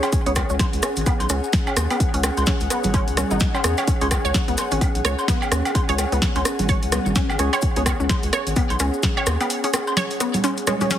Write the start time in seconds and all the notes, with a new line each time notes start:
Already playing: C#4 G#4 F#5
0.03 C#4, closed hi-hat, high woodblock, low woodblock, maracas
0.12 kick, closed hi-hat, maracas
0.26 C#2 B3 C#4 G#4 C#5, closed hi-hat, maracas
0.35 kick, cross-stick, closed hi-hat, low woodblock, maracas
0.49 C#2 C#4, maracas
0.59 kick, snare, closed hi-hat, high woodblock, maracas
0.73 C#2, closed hi-hat, maracas
0.83 C#4, cross-stick, closed hi-hat, maracas
0.96 G#1, closed hi-hat, maracas
1.06 B3, kick, closed hi-hat, low woodblock, maracas
1.20 B1, closed hi-hat, high woodblock, maracas
1.29 C#2 C#4, cross-stick, closed hi-hat, maracas
1.44 maracas
1.53 kick, snare, closed hi-hat, maracas
1.67 C#4, low woodblock, maracas
1.77 D#2, cross-stick, closed hi-hat, high woodblock, maracas
1.90 B3, closed hi-hat, low woodblock, maracas
2.00 kick, closed hi-hat, maracas
2.14 C#2 C#4, closed hi-hat, maracas
2.23 cross-stick, closed hi-hat, low woodblock, maracas
2.37 C#2, closed hi-hat, high woodblock, maracas
2.46 C#4, kick, snare, closed hi-hat, maracas
2.60 C#2, closed hi-hat, maracas
2.70 B3, cross-stick, closed hi-hat, maracas
2.83 G#1, closed hi-hat, low conga, maracas
2.94 C#4, kick, closed hi-hat, high woodblock, maracas
3.08 C#2, closed hi-hat, maracas
3.17 C#4, cross-stick, closed hi-hat, low conga, maracas
3.31 G#1 D#4, low conga, maracas
3.40 kick, snare, closed hi-hat, maracas
3.54 C#4, high woodblock, low woodblock, maracas
3.64 E2 C#4 G#4 C#5, cross-stick, closed hi-hat, maracas
3.77 C#5, closed hi-hat, low woodblock, maracas
3.88 C#4, kick, closed hi-hat, maracas
4.01 C#2 C#4 G#4 C#5, closed hi-hat, high woodblock, maracas
4.11 kick, cross-stick, closed hi-hat, low woodblock, maracas
4.25 C#2 C#5, maracas
4.34 kick, snare, closed hi-hat, maracas
4.48 C#2 B3, closed hi-hat, maracas
4.57 cross-stick, closed hi-hat, high woodblock, maracas
4.71 G#1 C#4, closed hi-hat, maracas
4.81 kick, closed hi-hat, low woodblock, maracas
4.95 B1, closed hi-hat, maracas
5.05 C#2 C#5, cross-stick, closed hi-hat, maracas
5.19 high woodblock, maracas
5.28 B3, kick, snare, closed hi-hat, maracas
5.42 low woodblock, maracas
5.52 D#2 C#4, cross-stick, closed hi-hat, maracas
5.65 closed hi-hat, low woodblock, maracas
5.75 kick, closed hi-hat, high woodblock, maracas
5.89 C#2 C#4 G#4 C#5, closed hi-hat, maracas
5.98 cross-stick, closed hi-hat, low woodblock, maracas
6.12 C#2 B3, closed hi-hat, maracas
6.22 kick, snare, closed hi-hat, maracas
6.35 C#2 C#4, closed hi-hat, high woodblock, maracas
6.45 cross-stick, closed hi-hat, maracas
6.59 G#1, closed hi-hat, low conga, maracas
6.69 C#5, kick, closed hi-hat, maracas
6.82 C#2, closed hi-hat, maracas
6.92 B3, cross-stick, closed hi-hat, low conga, high woodblock, maracas
7.06 G#1, low conga, maracas
7.15 C#4, kick, snare, closed hi-hat, maracas
7.29 G#1, low woodblock, maracas
7.39 C#2 C#4 G#4 C#5, cross-stick, closed hi-hat, maracas
7.53 C#5, closed hi-hat, high woodblock, low woodblock, maracas
7.61 kick, closed hi-hat, maracas
7.76 C#2 B3 C#4 G#4 C#5, closed hi-hat, maracas
7.86 kick, cross-stick, closed hi-hat, low woodblock, maracas
8.00 C#2 C#4, maracas
8.09 kick, snare, closed hi-hat, high woodblock, maracas
8.23 C#2, closed hi-hat, maracas
8.33 C#5, cross-stick, closed hi-hat, maracas
8.47 G#1, closed hi-hat, maracas
8.56 B3, kick, closed hi-hat, low woodblock, maracas
8.70 B1, closed hi-hat, high woodblock, maracas
8.79 C#2 C#4, cross-stick, closed hi-hat, maracas
8.94 maracas
9.03 kick, snare, closed hi-hat, maracas
9.17 C#5, low woodblock, maracas
9.26 D#2, cross-stick, closed hi-hat, high woodblock, maracas
9.41 B3, closed hi-hat, low woodblock, maracas
9.50 closed hi-hat, maracas
9.64 C#4 G#4 C#5, closed hi-hat, maracas
9.73 cross-stick, closed hi-hat, low woodblock, maracas
9.87 high woodblock, maracas
9.97 C#5, snare, closed hi-hat, maracas
10.10 closed hi-hat, maracas
10.20 B3, cross-stick, closed hi-hat, maracas
10.34 closed hi-hat, low conga, maracas
10.44 C#4, closed hi-hat, high woodblock, maracas
10.57 closed hi-hat, maracas
10.67 G#3 C#4 G#4 C#5, cross-stick, closed hi-hat, low conga, maracas
10.81 C#4 G#4 C#5, closed hi-hat, low conga, maracas
10.90 C#4, snare, closed hi-hat, maracas